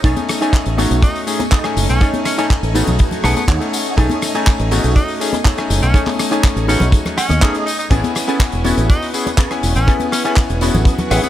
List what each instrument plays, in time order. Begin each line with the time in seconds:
Already playing: string machine C#6
0.04 fingered electric bass B1, electric grand piano A3 C#4 D#4 G#5, string machine A3 D#5 G#5, clean electric guitar D#4 G#4 A4 C#5, kick, closed hi-hat, tambourine
0.16 closed hi-hat, tambourine, high conga
0.29 cross-stick, open hi-hat, tambourine
0.41 electric grand piano A3 C#4 D#4 G#5, clean electric guitar D#4 G#4 A4 C#5, closed hi-hat, tambourine
0.53 kick, clap, closed hi-hat, tambourine
0.66 fingered electric bass A1, muted clean electric guitar stroke, closed hi-hat, tambourine
0.78 electric grand piano A3 C#4 D#4 F#4, clean electric guitar D#4 G#4 A4 C#5, open hi-hat, tambourine, high conga
0.91 fingered electric bass B1, closed hi-hat, tambourine
1.02 tenor saxophone D#4, kick, closed hi-hat, tambourine
1.15 open hi-hat, tambourine
1.27 electric grand piano A3 C#4 D#4 G#4, open hi-hat, tambourine
1.39 muted clean electric guitar stroke, closed hi-hat, tambourine, high conga
1.52 clean electric guitar D#4 G#4 A4 D#5, kick, clap, closed hi-hat, tambourine
1.64 electric grand piano A3 C#4 D#4 G#5, cross-stick, closed hi-hat, tambourine
1.76 fingered electric bass F#1, muted clean electric guitar stroke, open hi-hat, tambourine
1.89 fingered electric bass B1, tenor saxophone C#4, closed hi-hat, tambourine
2.00 electric grand piano A3 C#4 D#4 G#5, clean electric guitar D#4 G#4 A4 C#5, kick, closed hi-hat, tambourine
2.14 closed hi-hat, tambourine, high conga
2.25 tenor saxophone C#4, cross-stick, open hi-hat, tambourine
2.38 electric grand piano A3 C#4 D#4 G#5, tenor saxophone C#4, clean electric guitar D#4 G#4 A4 C#5, closed hi-hat, tambourine
2.50 kick, clap, closed hi-hat, tambourine
2.63 fingered electric bass A1, muted clean electric guitar stroke, closed hi-hat, tambourine
2.74 electric grand piano A3 C#4 D#4 F#4, clean electric guitar D#4 G#4 A4 B4, open hi-hat, tambourine, high conga
2.87 fingered electric bass B1, closed hi-hat, tambourine, low conga
2.99 kick, closed hi-hat, tambourine
3.11 closed hi-hat, tambourine, low conga
3.23 fingered electric bass B1, electric grand piano A3 C#4 D#4 G#4, tenor saxophone B3, clean electric guitar A5, cross-stick, open hi-hat, tambourine
3.36 tenor saxophone B3, muted clean electric guitar stroke, muted fingered electric bass stroke, closed hi-hat, tambourine, high conga
3.48 fingered electric bass D#2, clean electric guitar D#4 G#4 A4 C#5 F#5, kick, clap, closed hi-hat, tambourine
3.61 electric grand piano A3 C#4 D#4, closed hi-hat, tambourine
3.73 muted clean electric guitar stroke, open hi-hat, tambourine
3.86 closed hi-hat, tambourine
3.97 fingered electric bass B1, electric grand piano A3 C#4 D#4 G#5, clean electric guitar D#4 G#4 A4 C#5, kick, closed hi-hat, tambourine
4.10 closed hi-hat, tambourine, high conga
4.22 cross-stick, open hi-hat, tambourine
4.34 electric grand piano A3 C#4 D#4 G#5, clean electric guitar D#4 G#4 A4 C#5, closed hi-hat, tambourine
4.47 kick, clap, closed hi-hat, tambourine
4.59 fingered electric bass A1, muted clean electric guitar stroke, closed hi-hat, tambourine
4.71 electric grand piano A3 C#4 D#4 F#4, clean electric guitar D#4 G#4 A4 C#5, open hi-hat, tambourine, high conga
4.84 fingered electric bass B1, closed hi-hat, tambourine
4.96 tenor saxophone D#4, kick, closed hi-hat, tambourine
5.08 open hi-hat, tambourine
5.20 electric grand piano A3 C#4 D#4 G#4, open hi-hat, tambourine
5.33 muted clean electric guitar stroke, closed hi-hat, tambourine, high conga
5.45 clean electric guitar D#4 G#4 A4 C#5, kick, clap, closed hi-hat, tambourine
5.57 electric grand piano A3 C#4 D#4 G#5, cross-stick, closed hi-hat, tambourine
5.70 fingered electric bass F#1, muted clean electric guitar stroke, open hi-hat, tambourine
5.83 fingered electric bass B1, tenor saxophone C#4, closed hi-hat
5.94 electric grand piano A3 C#4 D#4 G#5, clean electric guitar D#4 G#4 A4 C#5, kick, closed hi-hat, tambourine
6.07 clap, open hi-hat, tambourine, high conga
6.19 cross-stick, open hi-hat, tambourine
6.31 electric grand piano A3 C#4 D#4 G#5, clean electric guitar D#4 G#4 A4 C#5, closed hi-hat
6.44 kick, clap, closed hi-hat, tambourine
6.56 fingered electric bass A1, muted clean electric guitar stroke, closed hi-hat, tambourine
6.68 electric grand piano A3 C#4 D#4 F#4, tenor saxophone C#4, clean electric guitar D#4 G#4 A4 B4, open hi-hat, tambourine, high conga
6.80 fingered electric bass B1, closed hi-hat, tambourine, low conga
6.92 kick, closed hi-hat, tambourine
7.06 cross-stick, closed hi-hat, tambourine, low conga
7.17 tenor saxophone C#4, clean electric guitar F#5, cross-stick, open hi-hat, tambourine
7.29 fingered electric bass D#2, clean electric guitar D#5, muted clean electric guitar stroke, closed hi-hat, tambourine, high conga
7.41 electric grand piano A3 C#4 D#4 G#4, clean electric guitar D#4 G#4 A4 B4 D#5, kick, clap, closed hi-hat, tambourine
7.54 closed hi-hat, tambourine
7.66 tenor saxophone D#4, muted clean electric guitar stroke, open hi-hat, tambourine
7.79 tenor saxophone D#4, closed hi-hat, tambourine
7.90 fingered electric bass A1, electric grand piano B3 C#4 E4 G#5, clean electric guitar C#4 G#4 A4 B4, string machine B4 C#6, kick, closed hi-hat, crash, tambourine
8.04 closed hi-hat, tambourine, high conga
8.15 cross-stick, open hi-hat, tambourine
8.27 electric grand piano B3 C#4 E4 G#5, clean electric guitar C#4 G#4 A4 B4, closed hi-hat, tambourine
8.40 kick, clap, closed hi-hat, tambourine
8.52 fingered electric bass E1, muted clean electric guitar stroke, closed hi-hat, tambourine
8.64 electric grand piano B3 C#4 E4 F#4, clean electric guitar C#4 G#4 A4 C#5, open hi-hat, tambourine, high conga
8.77 fingered electric bass A1, closed hi-hat, tambourine
8.89 tenor saxophone D#4, kick, closed hi-hat, tambourine
9.02 open hi-hat, tambourine
9.14 electric grand piano B3 C#4 E4 G#4, open hi-hat, tambourine
9.26 muted clean electric guitar stroke, closed hi-hat, tambourine, high conga
9.38 clean electric guitar C#4 G#4 A4 B4, kick, clap, closed hi-hat, tambourine
9.51 electric grand piano B3 C#4 E4 G#5, cross-stick, closed hi-hat, tambourine
9.63 fingered electric bass E1, muted clean electric guitar stroke, open hi-hat, tambourine
9.76 fingered electric bass A1, tenor saxophone C#4, closed hi-hat, tambourine
9.87 electric grand piano B3 C#4 E4 G#5, clean electric guitar C#4 G#4 A4 B4, kick, closed hi-hat, tambourine
10.00 closed hi-hat, tambourine, high conga
10.12 tenor saxophone C#4, cross-stick, open hi-hat, tambourine
10.24 electric grand piano B3 C#4 E4 G#5, clean electric guitar C#4 G#4 A4 B4, tenor saxophone C#4, closed hi-hat, tambourine
10.36 kick, clap, closed hi-hat, tambourine
10.49 fingered electric bass E1, muted clean electric guitar stroke, closed hi-hat, tambourine
10.61 electric grand piano B3 C#4 E4 F#4, clean electric guitar C#4 G#4 A4 B4, open hi-hat, tambourine, high conga
10.74 fingered electric bass A1, closed hi-hat, tambourine, low conga
10.85 kick, closed hi-hat, tambourine
10.99 closed hi-hat, tambourine, low conga
11.10 fingered electric bass A1, electric grand piano B3 C#4 E4 G#4, tenor saxophone B3, clean electric guitar E5, cross-stick, open hi-hat, tambourine
11.23 tenor saxophone B3, muted clean electric guitar stroke, muted fingered electric bass stroke, closed hi-hat, tambourine, high conga